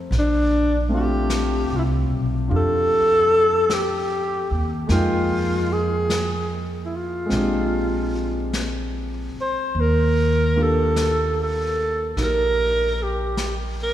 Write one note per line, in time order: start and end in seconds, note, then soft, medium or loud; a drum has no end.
0.00 0.11 A3 soft
0.00 0.12 C4 soft
0.00 0.12 D#4 soft
0.00 0.12 G4 soft
0.00 0.13 A4 soft
0.00 0.37 C5 soft
0.11 1.66 A#1 medium
0.11 brush sweep soft
0.11 snare soft
0.19 0.90 D4 medium
0.89 4.88 A3 soft
0.89 4.89 C4 soft
0.89 2.47 D4 soft
0.94 2.48 F4 soft
0.94 1.78 G4 medium
1.30 brush sweep soft
1.30 snare soft
1.30 hi-hat pedal soft
1.70 2.07 C2 soft
1.76 1.81 E4 medium
1.76 1.80 F4 medium
2.10 2.47 B1 medium
2.48 4.47 F2 medium
2.48 4.88 D4 soft
2.48 4.89 F4 soft
2.48 4.90 G4 soft
2.48 brush sweep soft
2.56 3.75 A4 loud
3.70 4.74 G4 medium
3.70 brush sweep soft
3.70 snare soft
3.70 hi-hat pedal soft
4.51 4.87 D#2 medium
4.87 7.26 F2 medium
4.87 7.24 G#3 soft
4.87 7.30 A#3 soft
4.87 7.31 D#4 soft
4.87 brush sweep soft
4.87 snare soft
4.92 5.74 F4 medium
4.92 7.32 G5 soft
5.73 6.51 G#4 medium
6.10 brush sweep soft
6.10 snare soft
6.10 hi-hat pedal soft
6.86 6.98 E4 soft
6.96 8.55 F4 medium
7.26 9.72 G#3 soft
7.26 9.74 C4 soft
7.30 9.30 A#1 medium
7.30 9.76 D4 soft
7.30 brush sweep soft
7.30 snare soft
7.36 9.77 G4 soft
8.53 brush sweep soft
8.53 snare soft
8.53 hi-hat pedal soft
9.35 muted upright bass stroke soft
9.41 9.82 C5 medium
9.75 12.13 D#2 medium
9.75 brush sweep soft
9.80 10.64 A#4 medium
10.56 13.94 A#3 soft
10.56 13.94 D4 soft
10.56 13.94 F4 soft
10.56 12.17 G4 soft
10.63 11.40 A4 medium
10.96 brush sweep soft
10.96 snare soft
10.96 hi-hat pedal soft
11.43 12.16 A4 medium
12.17 13.94 A#1 medium
12.17 13.94 D#4 soft
12.17 13.94 G4 soft
12.17 13.94 A#4 soft
12.17 brush sweep soft
12.17 snare soft
12.23 13.04 A#4 medium
13.03 13.57 G4 medium
13.37 brush sweep soft
13.37 snare soft
13.37 hi-hat pedal soft
13.83 13.94 A#4 medium